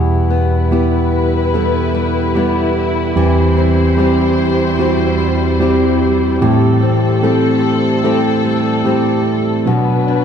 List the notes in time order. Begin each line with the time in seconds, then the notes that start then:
Already playing: E2 B2 G3 B3 E4 G4 B4
0.30 B3
0.71 G3 B3 E4 G4
1.54 G3 B3 E4 A4
1.94 G3
2.34 G3 B3 E4 G4
3.16 E2 E3 G3 C4 E4 G4 C5
3.57 C4
3.97 G3 C4 E4 G4
4.79 G3 C4 E4 F#4 G4
5.20 G3
5.60 G3 C4 E4 G4
6.41 A2 E3 A3 C4 E4 G4 A4
6.82 C4
7.22 G3 A3 C4 E4 G4 A4
8.03 G3 A3 C4 E4 G4 A4
8.45 G3
8.84 G3 A3 C4 E4 G4
9.66 B2 F#3 B3 D4 F#4 B4
10.08 D4